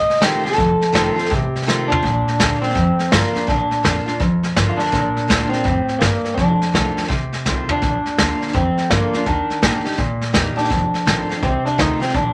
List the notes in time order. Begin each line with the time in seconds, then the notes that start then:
Already playing: C3 D#5
0.08 muted upright bass stroke, snare
0.16 snare
0.21 A1 D#3 A3 C4 F4 G4, snare, hi-hat pedal
0.44 C2 C4 F4 A4, snare
0.52 snare
0.56 F1 F2, kick, snare
0.81 muted upright bass stroke, snare
0.93 F1 D#3 A3 C4 F4, snare, hi-hat pedal
1.16 C4 F4, muted upright bass stroke, snare
1.25 snare
1.30 A1 C3, kick, snare
1.39 G4
1.53 muted upright bass stroke, snare
1.62 snare
1.67 A1 D#3 A3 C4 F4, snare, hi-hat pedal
1.88 A1 C4 D4 F4, floor tom
2.03 A#1 A#2, kick, snare
2.26 muted upright bass stroke, snare
2.39 D2 D3 A#3 D4 F4, kick, snare, hi-hat pedal
2.62 C4 D4 F4, muted upright bass stroke, snare
2.69 snare
2.75 F2, kick, snare
2.98 muted upright bass stroke, snare
3.11 G2 D3 A#3 D4 F4, kick, snare, hi-hat pedal
3.33 D4 F4, muted upright bass stroke, snare
3.47 A#1 A#2 D4, kick, snare
3.71 muted upright bass stroke, snare
3.83 F2 D3 A#3 D4 F4, kick, snare, hi-hat pedal
4.06 D4 F4, muted upright bass stroke, snare
4.20 F2 G2, kick, snare
4.43 A#2, snare
4.56 G2 D3 A#3 D4 F4, kick, snare, hi-hat pedal
4.69 F4
4.77 D4, muted upright bass stroke, snare
4.86 snare
4.92 A#1 A#2, kick, snare
5.15 muted upright bass stroke, snare
5.28 D2 D3 A#3 D4 F4, kick, snare, hi-hat pedal
5.49 C4 D4 F4, muted upright bass stroke, snare
5.64 F2 A2, kick, snare
5.88 muted upright bass stroke, snare
5.99 G2 A#3, kick, snare, hi-hat pedal
6.24 muted upright bass stroke, snare
6.34 F1 F2 D4, kick, snare
6.61 muted upright bass stroke, snare
6.73 C2 D#3 A3 C4 F4, kick, snare, hi-hat pedal
6.97 muted upright bass stroke, snare
7.04 snare
7.08 D2 C3, kick, snare
7.32 F2, snare
7.45 C2 D#3 A3 C4 F4, kick, snare, hi-hat pedal
7.69 C4 D4 F4, muted upright bass stroke, floor tom
7.82 A#1 A#2, kick, snare
8.05 muted upright bass stroke, snare
8.18 D2 D3 A#3 D4 F4, kick, snare, hi-hat pedal
8.41 muted upright bass stroke, snare
8.48 snare
8.53 F2 C4, kick, snare
8.77 muted upright bass stroke, snare
8.90 G2 D3 A#3 D4 F4, kick, snare, hi-hat pedal
9.13 D4 F4, muted upright bass stroke, snare
9.26 D#2 D#3 D4, kick, snare
9.49 muted upright bass stroke, snare
9.62 A#2 D#3 A#3 D#4 G4, kick, snare, hi-hat pedal
9.84 D#4 G4, muted upright bass stroke, snare
9.92 snare
9.98 A#2 C3, kick, snare
10.21 snare
10.33 E2 D#3 A#3 D#4 G4, kick, snare, hi-hat pedal
10.56 D4 D#4 G4, muted upright bass stroke, snare
10.64 snare
10.70 F1 F2, kick, snare
10.93 muted upright bass stroke, snare
11.05 A1 D#3 A3 C4 F4, kick, snare, hi-hat pedal
11.29 C4 F4, muted upright bass stroke, snare
11.42 C2 C3 C4, kick, snare
11.65 D4, muted upright bass stroke, snare
11.78 D2 D#3 A3 C4 D#4 F4, kick, snare, hi-hat pedal
12.00 C4 F4, muted upright bass stroke, snare
12.09 snare
12.14 A#1 A#2 D4, kick, snare